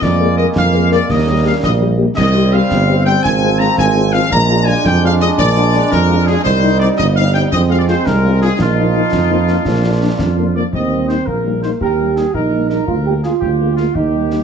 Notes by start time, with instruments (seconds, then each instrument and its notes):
0.02 tuba F2, trombone section G#3 A#3, trumpet section D5, concert bass drum, snare
0.20 french horn section G#3 A#3 A#4
0.38 french horn section G#3 A#3 A#4, trumpet section D#5
0.55 tuba F2, trumpet section F5, concert bass drum, snare
0.74 french horn section G#3 A#3 A#4
0.91 french horn section G#3 A#3 A#4, trumpet section D5, snare
1.09 tuba D#2, trombone section G3, trumpet section D#5, concert bass drum, snare
1.27 french horn section G3 A#3 G4
1.45 french horn section G3 A#3 G4, trumpet section F5
1.63 tuba A#1, trumpet section D#5, concert bass drum, snare
1.81 french horn section G3 A#3 G4
1.98 french horn section G3 A#3 G4
2.16 tuba C2, trombone section G3 C4, trumpet section D#5, concert bass drum, snare, crash
2.34 french horn section G3 C4 G4
2.52 french horn section G3 C4 G4, trumpet section F5
2.70 tuba G1, concert bass drum, snare
2.87 french horn section G3 C4 G4
3.05 french horn section G3 C4 G4, trumpet section G5, snare
3.23 tuba G#1, trombone section F3, trumpet section G#5, concert bass drum, snare
3.42 french horn section G#3 C4 F4
3.59 french horn section G#3 C4 F4, trumpet section A#5, snare
3.77 tuba G#1, trumpet section G#5, concert bass drum, snare
3.95 french horn section G#3 C4 F4
4.13 french horn section G#3 C4 F4, trumpet section F5, snare
4.30 tuba A#1, trombone section G#3 D4, trumpet section A#5, concert bass drum, snare
4.49 french horn section G#3 D4 F4
4.66 french horn section G#3 D4 F4, trumpet section G#5
4.84 tuba F2, trumpet section G5, concert bass drum, snare
5.02 french horn section G#3 D4 F4, trumpet section F5
5.20 french horn section G#3 D4 F4, trumpet section D#5, snare
5.38 tuba A#1, trumpet section D5, concert bass drum, snare
5.56 french horn section G#3 D4 F4
5.73 french horn section G#3 D4 F4, snare
5.91 tuba F2, trumpet section A#4, concert bass drum, snare
6.08 french horn section G#3 D4 F4
6.26 french horn section G#3 D4 F4, trumpet section G#4, snare
6.43 tuba C2, trombone section G3 D#4, trumpet section C5, concert bass drum, snare, crash
6.62 french horn section G3 C4 D#4
6.80 french horn section G3 C4 D#4, trumpet section D5
6.98 tuba G1, trumpet section D#5, concert bass drum, snare
7.16 french horn section G3 C4 D#4, trumpet section F5
7.34 french horn section G3 C4 D#4, trumpet section G5, snare
7.52 tuba F2, trombone section G#3 C4, trumpet section D#5, concert bass drum, snare
7.69 french horn section G#3 C4 F4, trumpet section F5
7.79 trumpet section D5
7.87 french horn section G#3 C4 F4, trumpet section C5, snare
8.06 tuba C2, trumpet section A#4, concert bass drum, snare
8.24 french horn section G#3 C4 F4
8.41 french horn section G#3 C4 F4, trumpet section G#4, snare
8.58 tuba A#1, trombone section F3 D#4, trumpet section F4, concert bass drum, snare
8.77 french horn section F3 A#3 D#4
8.94 french horn section F3 A#3 D#4
9.12 tuba F2, concert bass drum, snare
9.30 french horn section F3 A#3 D#4
9.47 french horn section F3 A#3 D#4, snare
9.65 tuba A#1, trombone section D4, concert bass drum, snare
9.83 french horn section F3 A#3 D4
10.01 french horn section F3 A#3 D4
10.19 tuba F2, concert bass drum, snare
10.36 french horn section F3 A#3 D4
10.55 french horn section F3 A#3 D4, trumpet section D5
10.73 tuba D#2, euphonium C4, trumpet section D#5, concert bass drum
10.91 french horn section G3 A#3 D#4
11.08 french horn section G3 A#3 D#4, trumpet section C5, snare
11.26 tuba A#1, euphonium A#3, trumpet section A#4, concert bass drum
11.44 french horn section G3 A#3 D#4
11.62 french horn section G3 A#3 D#4, trumpet section C5, snare
11.80 tuba D#2, euphonium G4, trumpet section A#4, concert bass drum
11.98 french horn section G3 A#3 D#4
12.16 french horn section G3 A#3 D#4, trumpet section G#4, snare
12.34 tuba A#1, euphonium D#4, trumpet section A#4, concert bass drum
12.53 french horn section G3 A#3 D#4
12.69 french horn section G3 A#3 D#4, trumpet section A#4, snare
12.87 tuba D2, euphonium F4, concert bass drum
13.06 french horn section G#3 A#3 F4, euphonium G4
13.23 french horn section G#3 A#3 F4, euphonium F4, trumpet section G#4, snare
13.41 tuba D2, trumpet section G4, concert bass drum
13.60 french horn section G#3 A#3 F4
13.76 french horn section G#3 A#3 F4, trumpet section F4, snare
13.95 tuba D#2, euphonium D#4, trumpet section G4, concert bass drum
14.13 french horn section G3 A#3 D#4
14.31 french horn section G3 A#3 D#4, snare